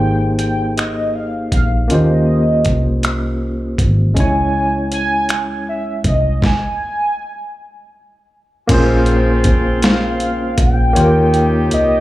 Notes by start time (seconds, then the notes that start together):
Already playing: G#1 A#3 D#4 G4 G#4 C5 G5
0.39 G5, closed hi-hat
0.77 D#5, finger snap, closed hi-hat
1.15 F5
1.52 A#1 F5, kick, closed hi-hat
1.88 D#2 A#3 C#4 F4 D#5, closed hi-hat
1.92 G4 C5
2.65 C2, kick, closed hi-hat
3.03 finger snap, closed hi-hat
3.78 G#1, kick, closed hi-hat
4.14 C#2 G#3 C#4, kick, closed hi-hat
4.19 E4 C#5 G#5
4.92 G#5, closed hi-hat
5.29 finger snap, closed hi-hat
5.69 E5
6.04 C2 D#5, kick, closed hi-hat
6.42 G#5, kick, snare
8.67 A#1 C#3 A#3 C4 C#4 F4, kick, closed hi-hat, crash
8.72 G#4 C5
9.06 closed hi-hat
9.44 kick, closed hi-hat
9.82 F5, snare, closed hi-hat
10.20 closed hi-hat
10.58 A#1 G5, kick, closed hi-hat
10.93 D#2 C3 D#3 A#3 F4 G4 C#5, closed hi-hat
10.98 G4 A#4
11.34 closed hi-hat
11.71 C2 D#5, closed hi-hat